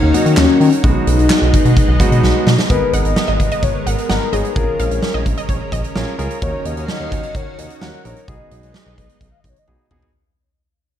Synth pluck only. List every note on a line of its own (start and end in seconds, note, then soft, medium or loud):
2.94 3.01 F#5 medium
3.28 3.35 D#5 medium
3.52 3.59 D#5 medium
3.87 4.01 F#5 medium
4.10 4.17 F#5 medium
4.33 4.40 D#5 medium
4.80 4.87 F5 medium
5.14 5.21 D#5 medium
5.38 5.45 D#5 medium
5.49 5.63 C#5 medium
5.73 5.80 D#5 medium